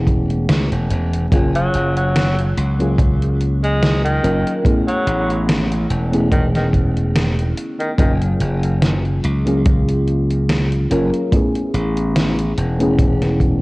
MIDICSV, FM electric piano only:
0, 0, Header, 1, 2, 480
1, 0, Start_track
1, 0, Tempo, 833333
1, 761, Time_signature, 4, 2, 24, 8
1, 7844, End_track
2, 0, Start_track
2, 0, Title_t, "FM electric piano"
2, 0, Program_c, 0, 5
2, 0, Control_c, 0, 64, 127
2, 0, Note_on_c, 0, 57, 78
2, 0, Note_on_c, 0, 59, 74
2, 0, Note_on_c, 0, 61, 71
2, 0, Note_on_c, 0, 64, 72
2, 0, Note_on_c, 0, 68, 87
2, 732, Note_off_c, 0, 57, 0
2, 733, Note_off_c, 0, 59, 0
2, 736, Note_off_c, 0, 61, 0
2, 738, Note_off_c, 0, 64, 0
2, 740, Note_off_c, 0, 68, 0
2, 754, Note_on_c, 0, 54, 79
2, 758, Note_on_c, 0, 58, 76
2, 762, Note_on_c, 0, 61, 75
2, 766, Note_on_c, 0, 65, 78
2, 770, Control_c, 0, 64, 0
2, 771, Note_on_c, 0, 68, 94
2, 884, Control_c, 0, 64, 127
2, 1577, Note_off_c, 0, 54, 0
2, 1580, Note_off_c, 0, 58, 0
2, 1581, Note_off_c, 0, 61, 0
2, 1584, Note_off_c, 0, 65, 0
2, 1586, Note_off_c, 0, 68, 0
2, 1605, Note_on_c, 0, 54, 79
2, 1609, Note_on_c, 0, 58, 77
2, 1614, Note_on_c, 0, 61, 74
2, 1618, Note_on_c, 0, 65, 73
2, 1623, Note_on_c, 0, 68, 92
2, 2412, Note_off_c, 0, 54, 0
2, 2414, Note_off_c, 0, 58, 0
2, 2416, Note_off_c, 0, 61, 0
2, 2418, Note_off_c, 0, 65, 0
2, 2421, Note_off_c, 0, 68, 0
2, 2435, Note_on_c, 0, 54, 79
2, 2437, Note_on_c, 0, 58, 73
2, 2439, Note_on_c, 0, 61, 76
2, 2441, Note_on_c, 0, 65, 71
2, 2444, Note_on_c, 0, 70, 87
2, 2652, Note_off_c, 0, 54, 0
2, 2653, Note_off_c, 0, 58, 0
2, 2654, Note_off_c, 0, 61, 0
2, 2655, Note_off_c, 0, 65, 0
2, 2657, Note_off_c, 0, 70, 0
2, 2671, Note_on_c, 0, 57, 78
2, 2675, Note_on_c, 0, 59, 73
2, 2679, Note_on_c, 0, 61, 73
2, 2684, Note_on_c, 0, 64, 73
2, 2687, Note_on_c, 0, 68, 91
2, 2688, Control_c, 0, 64, 0
2, 2782, Control_c, 0, 64, 127
2, 3496, Note_off_c, 0, 57, 0
2, 3498, Note_off_c, 0, 59, 0
2, 3500, Note_off_c, 0, 61, 0
2, 3502, Note_off_c, 0, 64, 0
2, 3504, Note_off_c, 0, 68, 0
2, 3524, Note_on_c, 0, 57, 83
2, 3529, Note_on_c, 0, 59, 73
2, 3533, Note_on_c, 0, 61, 72
2, 3538, Note_on_c, 0, 64, 73
2, 3541, Note_on_c, 0, 68, 85
2, 4571, Note_off_c, 0, 57, 0
2, 4574, Note_off_c, 0, 59, 0
2, 4576, Note_off_c, 0, 61, 0
2, 4578, Note_off_c, 0, 64, 0
2, 4580, Note_off_c, 0, 68, 0
2, 4594, Note_on_c, 0, 54, 86
2, 4597, Note_on_c, 0, 58, 77
2, 4604, Note_on_c, 0, 61, 79
2, 4607, Note_on_c, 0, 65, 77
2, 4610, Control_c, 0, 64, 0
2, 4612, Note_on_c, 0, 68, 93
2, 4698, Control_c, 0, 64, 127
2, 5418, Note_off_c, 0, 54, 0
2, 5419, Note_off_c, 0, 58, 0
2, 5422, Note_off_c, 0, 61, 0
2, 5424, Note_off_c, 0, 65, 0
2, 5426, Note_off_c, 0, 68, 0
2, 5443, Note_on_c, 0, 54, 77
2, 5447, Note_on_c, 0, 58, 76
2, 5451, Note_on_c, 0, 61, 75
2, 5457, Note_on_c, 0, 65, 73
2, 5461, Note_on_c, 0, 68, 91
2, 6251, Note_off_c, 0, 54, 0
2, 6252, Note_off_c, 0, 58, 0
2, 6255, Note_off_c, 0, 61, 0
2, 6258, Note_off_c, 0, 65, 0
2, 6260, Note_off_c, 0, 68, 0
2, 6278, Note_on_c, 0, 54, 82
2, 6281, Note_on_c, 0, 58, 76
2, 6281, Note_on_c, 0, 61, 74
2, 6284, Note_on_c, 0, 65, 78
2, 6287, Note_on_c, 0, 70, 93
2, 6494, Note_off_c, 0, 54, 0
2, 6495, Note_off_c, 0, 58, 0
2, 6495, Note_off_c, 0, 61, 0
2, 6497, Note_off_c, 0, 65, 0
2, 6498, Note_off_c, 0, 70, 0
2, 6514, Note_on_c, 0, 57, 84
2, 6517, Note_on_c, 0, 59, 73
2, 6523, Note_on_c, 0, 61, 74
2, 6526, Note_on_c, 0, 64, 72
2, 6528, Control_c, 0, 64, 0
2, 6529, Note_on_c, 0, 68, 93
2, 6632, Control_c, 0, 64, 127
2, 7337, Note_off_c, 0, 57, 0
2, 7339, Note_off_c, 0, 59, 0
2, 7342, Note_off_c, 0, 61, 0
2, 7343, Note_off_c, 0, 64, 0
2, 7345, Note_off_c, 0, 68, 0
2, 7365, Note_on_c, 0, 57, 80
2, 7369, Note_on_c, 0, 59, 73
2, 7373, Note_on_c, 0, 61, 78
2, 7378, Note_on_c, 0, 64, 75
2, 7381, Note_on_c, 0, 68, 89
2, 7844, Note_off_c, 0, 57, 0
2, 7844, Note_off_c, 0, 59, 0
2, 7844, Note_off_c, 0, 61, 0
2, 7844, Note_off_c, 0, 64, 0
2, 7844, Note_off_c, 0, 68, 0
2, 7844, End_track
0, 0, End_of_file